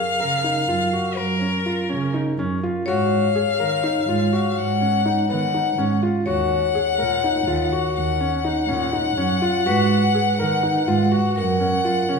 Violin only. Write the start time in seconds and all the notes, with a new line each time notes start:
Already playing: F5
1.17 A#4
2.87 F5
4.58 F#5
5.30 F#5
6.27 F#5
7.96 F#5
11.38 F#5